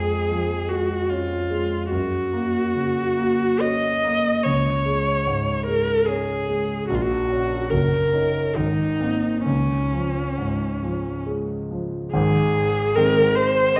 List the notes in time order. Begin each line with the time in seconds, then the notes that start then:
Already playing: F2 G#3 G#4
0.31 F3
0.69 G#3 F#4
1.09 C#4 F4
1.50 G#3
1.90 F#2 F#4
2.33 A#3
2.75 C#3
3.17 A#3
3.61 C#4 D#5
4.04 A#3
4.43 C#2 C#5
4.86 G#3
5.27 G#2
5.66 G#3 A#4
6.05 C#4 G#4
6.49 G#3
6.87 A#1 F#4
6.95 F4
7.02 F#4
7.30 C#4 F#4
7.70 F#1 A#4
8.13 C#4 D#4
8.56 G#1 D#4
9.00 A#3 C4
9.45 C#2 C#4
9.93 F3
10.38 G#2
10.83 F3
11.26 G#3
11.71 F3
12.13 G#1 G#2 G#4
12.95 D#3 G#3 C4 A#4
13.35 C5
13.77 D#5